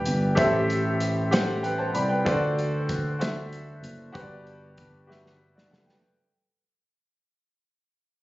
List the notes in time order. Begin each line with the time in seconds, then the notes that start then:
Already playing: E3 G4 B4 D5 E5 G5
0.05 G1, closed hi-hat
0.35 A1 A2 G4 A4 C5 E5, kick, closed hi-hat
0.70 closed hi-hat
1.00 closed hi-hat
1.31 G4 A4 C5 F#5, snare, closed hi-hat
1.63 B4 G5, closed hi-hat
1.78 C5 A5
1.94 C2 D5 B5, closed hi-hat
2.09 B4 G5
2.25 D2 D3 F4 A4 C5 D5, kick, closed hi-hat
2.32 F#4
2.59 closed hi-hat
2.89 kick, closed hi-hat
3.19 F#4 A4 C5 E5, snare, closed hi-hat
3.53 closed hi-hat
3.82 F#1, closed hi-hat
4.13 G1 G2 F#4 G4 B4 C5, kick, closed hi-hat
4.22 D5
4.47 closed hi-hat
4.77 kick, closed hi-hat
5.07 F#4 G4 B4 E5, snare
5.26 snare
5.56 F#4 D5, snare
5.71 F#1 A4 F#5, snare
5.86 B4 G5, snare